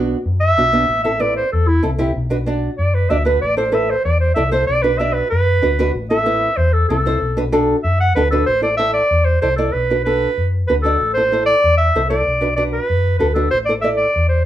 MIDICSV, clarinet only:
0, 0, Header, 1, 2, 480
1, 0, Start_track
1, 0, Tempo, 315789
1, 1351, Time_signature, 4, 2, 24, 8
1, 21975, End_track
2, 0, Start_track
2, 0, Title_t, "Clarinet"
2, 0, Program_c, 0, 71
2, 615, Note_on_c, 0, 76, 116
2, 1555, Note_off_c, 0, 76, 0
2, 1574, Note_on_c, 0, 76, 90
2, 1825, Note_on_c, 0, 74, 89
2, 1848, Note_off_c, 0, 76, 0
2, 2062, Note_off_c, 0, 74, 0
2, 2073, Note_on_c, 0, 72, 83
2, 2306, Note_off_c, 0, 72, 0
2, 2315, Note_on_c, 0, 69, 88
2, 2547, Note_on_c, 0, 64, 96
2, 2570, Note_off_c, 0, 69, 0
2, 2783, Note_off_c, 0, 64, 0
2, 4216, Note_on_c, 0, 74, 91
2, 4478, Note_on_c, 0, 71, 82
2, 4501, Note_off_c, 0, 74, 0
2, 4710, Note_on_c, 0, 76, 85
2, 4733, Note_off_c, 0, 71, 0
2, 4931, Note_off_c, 0, 76, 0
2, 4940, Note_on_c, 0, 71, 84
2, 5183, Note_off_c, 0, 71, 0
2, 5193, Note_on_c, 0, 74, 101
2, 5424, Note_off_c, 0, 74, 0
2, 5433, Note_on_c, 0, 72, 85
2, 5686, Note_on_c, 0, 76, 78
2, 5709, Note_off_c, 0, 72, 0
2, 5927, Note_on_c, 0, 72, 90
2, 5950, Note_off_c, 0, 76, 0
2, 6146, Note_off_c, 0, 72, 0
2, 6156, Note_on_c, 0, 74, 89
2, 6377, Note_off_c, 0, 74, 0
2, 6387, Note_on_c, 0, 72, 78
2, 6595, Note_off_c, 0, 72, 0
2, 6605, Note_on_c, 0, 76, 83
2, 6856, Note_off_c, 0, 76, 0
2, 6868, Note_on_c, 0, 72, 89
2, 7086, Note_off_c, 0, 72, 0
2, 7095, Note_on_c, 0, 74, 98
2, 7330, Note_on_c, 0, 71, 87
2, 7353, Note_off_c, 0, 74, 0
2, 7579, Note_on_c, 0, 76, 81
2, 7602, Note_off_c, 0, 71, 0
2, 7807, Note_on_c, 0, 71, 86
2, 7830, Note_off_c, 0, 76, 0
2, 8046, Note_off_c, 0, 71, 0
2, 8055, Note_on_c, 0, 71, 96
2, 9002, Note_off_c, 0, 71, 0
2, 9273, Note_on_c, 0, 76, 92
2, 9982, Note_on_c, 0, 72, 88
2, 10005, Note_off_c, 0, 76, 0
2, 10228, Note_on_c, 0, 69, 96
2, 10250, Note_off_c, 0, 72, 0
2, 10456, Note_off_c, 0, 69, 0
2, 10465, Note_on_c, 0, 69, 93
2, 11406, Note_off_c, 0, 69, 0
2, 11907, Note_on_c, 0, 76, 86
2, 12148, Note_off_c, 0, 76, 0
2, 12161, Note_on_c, 0, 78, 97
2, 12386, Note_off_c, 0, 78, 0
2, 12395, Note_on_c, 0, 71, 96
2, 12623, Note_off_c, 0, 71, 0
2, 12629, Note_on_c, 0, 69, 95
2, 12855, Note_off_c, 0, 69, 0
2, 12864, Note_on_c, 0, 72, 104
2, 13096, Note_off_c, 0, 72, 0
2, 13119, Note_on_c, 0, 74, 90
2, 13323, Note_off_c, 0, 74, 0
2, 13333, Note_on_c, 0, 76, 100
2, 13570, Note_off_c, 0, 76, 0
2, 13584, Note_on_c, 0, 74, 100
2, 14060, Note_on_c, 0, 72, 88
2, 14083, Note_off_c, 0, 74, 0
2, 14299, Note_off_c, 0, 72, 0
2, 14308, Note_on_c, 0, 72, 93
2, 14525, Note_off_c, 0, 72, 0
2, 14534, Note_on_c, 0, 69, 87
2, 14775, Note_on_c, 0, 71, 102
2, 14798, Note_off_c, 0, 69, 0
2, 15261, Note_off_c, 0, 71, 0
2, 15270, Note_on_c, 0, 71, 95
2, 15945, Note_off_c, 0, 71, 0
2, 16222, Note_on_c, 0, 71, 81
2, 16335, Note_off_c, 0, 71, 0
2, 16456, Note_on_c, 0, 69, 93
2, 16914, Note_off_c, 0, 69, 0
2, 16925, Note_on_c, 0, 72, 97
2, 17387, Note_off_c, 0, 72, 0
2, 17419, Note_on_c, 0, 74, 103
2, 17874, Note_off_c, 0, 74, 0
2, 17893, Note_on_c, 0, 76, 100
2, 18351, Note_off_c, 0, 76, 0
2, 18384, Note_on_c, 0, 74, 92
2, 19059, Note_off_c, 0, 74, 0
2, 19094, Note_on_c, 0, 74, 93
2, 19207, Note_off_c, 0, 74, 0
2, 19341, Note_on_c, 0, 71, 97
2, 20016, Note_off_c, 0, 71, 0
2, 20044, Note_on_c, 0, 71, 87
2, 20275, Note_off_c, 0, 71, 0
2, 20284, Note_on_c, 0, 69, 79
2, 20520, Note_off_c, 0, 69, 0
2, 20533, Note_on_c, 0, 72, 104
2, 20645, Note_off_c, 0, 72, 0
2, 20752, Note_on_c, 0, 74, 91
2, 20869, Note_off_c, 0, 74, 0
2, 20998, Note_on_c, 0, 76, 91
2, 21113, Note_off_c, 0, 76, 0
2, 21233, Note_on_c, 0, 74, 99
2, 21694, Note_off_c, 0, 74, 0
2, 21717, Note_on_c, 0, 72, 82
2, 21953, Note_off_c, 0, 72, 0
2, 21975, End_track
0, 0, End_of_file